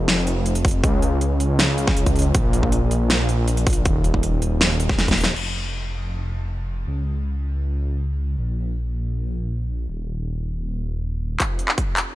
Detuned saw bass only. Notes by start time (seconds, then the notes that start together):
Already playing: F1
0.84 C#2
2.35 A#1
3.86 D#1
5.36 F1
6.87 C#2
8.38 A#1
9.89 D#1
11.40 F1